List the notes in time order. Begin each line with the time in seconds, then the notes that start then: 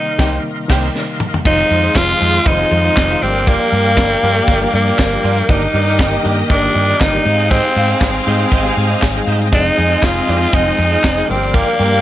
Already playing: C3 D#3 G3 A#3 D#4 A#4 D#5 F5 C6
0.18 C2 C3 D#3 G3 A#3 D#4 G4 C5 G5, kick, snare
0.68 C2 C3 D#3 G3 A#3 D#4 G4 C5 G5, kick, snare, crash
0.96 snare
1.20 mid tom
1.34 floor tom
1.44 F1 D#3 F3 G#3 C4 D#4 F4 G#4 C5 D#5 F5 C6, kick, crash
1.59 muted clean electric guitar stroke, closed hi-hat
1.71 F2 G#3 D#4 F4 C5, open hi-hat
1.84 G#3 D#4 F4 C5, closed hi-hat
1.95 F1 D#3 F3 G#3 C4 F4, muted clean electric guitar stroke, kick, snare, clap, tambourine
2.10 muted clean electric guitar stroke, closed hi-hat
2.20 F2 D#3 F3 G#3 C4 D#4 F4 C5, open hi-hat
2.34 muted clean electric guitar stroke, closed hi-hat
2.45 F1 G#3 D#4 F4 C5, kick, closed hi-hat
2.59 D#3 F3 G#3 C4 F4, muted clean electric guitar stroke, closed hi-hat
2.71 F2, muted clean electric guitar stroke, open hi-hat
2.85 G#3 D#4 F4 C5, closed hi-hat
2.96 F1, muted clean electric guitar stroke, kick, snare, clap, tambourine
3.10 D#3 F3 G#3 C4 D#4 F4 C5, closed hi-hat
3.21 G1 F3 G3 G#3 A#3 C4 D4 G4 A#4 D5 G5 D6, open hi-hat
3.28 A#3
3.36 muted clean electric guitar stroke, closed hi-hat
3.47 A#3 F4 G4 D5, kick, closed hi-hat
3.61 muted clean electric guitar stroke, closed hi-hat
3.72 G2 A#3 F4 G4 F5, open hi-hat
3.87 A#3 F4 G4 F5, closed hi-hat
3.97 G1 F3 G3 A#3 D4 G4, muted clean electric guitar stroke, kick, snare, clap, tambourine
4.11 muted clean electric guitar stroke, closed hi-hat
4.22 G2 F3 G3 A#3 D4 F4 G4 D5, open hi-hat
4.37 muted clean electric guitar stroke, closed hi-hat
4.47 G1 A#3 F4 G4 D5, kick, closed hi-hat
4.62 F3 G3 A#3 D4 G4, muted clean electric guitar stroke, closed hi-hat
4.74 G2 A#3, muted clean electric guitar stroke, open hi-hat
4.88 A#3 F4 G4 D5, closed hi-hat
4.98 G1, muted clean electric guitar stroke, kick, snare, clap, tambourine
5.13 F3 G3 A#3 D4 G4, muted clean electric guitar stroke, closed hi-hat
5.24 G2 A#3 F4 G4 D5, open hi-hat
5.38 muted clean electric guitar stroke, closed hi-hat
5.48 G1 D#3 G3 A#3 D4 D#4 F#4 G4 A#4 D5 D#5, kick, closed hi-hat
5.56 G4
5.62 muted clean electric guitar stroke, closed hi-hat
5.74 G2 D4 G4 A#4 D5, open hi-hat
5.89 D4 G4 A#4 D5, closed hi-hat
5.98 G1 D#3 G3 A#3 D4 G4, muted clean electric guitar stroke, kick, snare, clap, tambourine
6.13 muted clean electric guitar stroke, closed hi-hat
6.23 G2 D#3 G3 A#3 D4 G4 A#4 D5, open hi-hat
6.39 muted clean electric guitar stroke, closed hi-hat
6.50 G1 D4 G4 A#4 D5, kick, closed hi-hat
6.63 D3 D#3 G3 A#3 F4, muted clean electric guitar stroke, closed hi-hat
6.70 G4
6.75 G2, muted clean electric guitar stroke, open hi-hat
6.90 D4 G4 A#4 D5, closed hi-hat
7.00 G1 D#4, muted clean electric guitar stroke, kick, snare, clap, tambourine
7.13 D#3 G3 A#3 D4 G4 A#4 D5, closed hi-hat
7.24 G#2 G#3 C4 D#4 G4 G#4 C5 D#5 F5 D#6, muted clean electric guitar stroke, open hi-hat
7.40 muted clean electric guitar stroke, closed hi-hat
7.51 C4 D#4 G4 C5 D#5, kick, closed hi-hat
7.65 muted clean electric guitar stroke, closed hi-hat
7.76 G#2 D#4 G4 C5 F5, open hi-hat
7.90 D#4 G4 C5 F5, closed hi-hat
8.01 G#1 G3 G#3 C4 D#4 G#4, muted clean electric guitar stroke, kick, snare, clap, tambourine
8.15 muted clean electric guitar stroke, closed hi-hat
8.26 G#2 G3 G#3 C4 D#4 G4 G#4 C5 D#5, open hi-hat
8.41 muted clean electric guitar stroke, closed hi-hat
8.52 G#1 D#4 G4 C5 D#5, kick, closed hi-hat
8.65 G#3 C4 D#4 G4 G#4, muted clean electric guitar stroke, closed hi-hat
8.76 G#2, muted clean electric guitar stroke, open hi-hat
8.90 D#4 G4 C5 D#5, closed hi-hat
9.02 G#1, kick, snare, clap, tambourine
9.16 G3 G#3 C4 D#4 G#4, muted clean electric guitar stroke, closed hi-hat
9.27 G#2 D#4 G4 C5 D#5, open hi-hat
9.41 muted clean electric guitar stroke, closed hi-hat
9.52 F1 F3 G#3 C4 D#4 F4 G#4 D#5 F5, kick, closed hi-hat
9.66 muted clean electric guitar stroke, closed hi-hat
9.77 F2 C4 F4 G#4 D#5, open hi-hat
9.91 C4 F4 G#4 D#5, closed hi-hat
10.03 F1 F3 G#3 C4 F4, muted clean electric guitar stroke, kick, snare, clap, tambourine
10.17 muted clean electric guitar stroke, closed hi-hat
10.28 F2 F3 G#3 C4 D#4 F4 G#4 D#5, open hi-hat
10.41 muted clean electric guitar stroke, closed hi-hat
10.52 F1 C4 D#4 F4 G#4 D#5, kick, closed hi-hat
10.67 F3 G#3 C4 D#4 G#4, muted clean electric guitar stroke, closed hi-hat
10.78 F2, muted clean electric guitar stroke, open hi-hat
10.91 C4 F4 G#4 D#5, closed hi-hat
11.03 F1, muted clean electric guitar stroke, kick, snare, clap, tambourine
11.17 F3 G#3 C4 D#4 F4 G#4 D#5, closed hi-hat
11.28 G1 F3 G3 A#3 C4 D4 F4 G4 A#4 D5 G5 D6, muted clean electric guitar stroke, open hi-hat
11.36 G4
11.42 muted clean electric guitar stroke, closed hi-hat
11.54 A#3 F4 G4 D5, kick, closed hi-hat
11.68 muted clean electric guitar stroke, closed hi-hat
11.78 G2 A#3 F4 G4 F5, open hi-hat
11.93 A#3 F4 G4 F5, closed hi-hat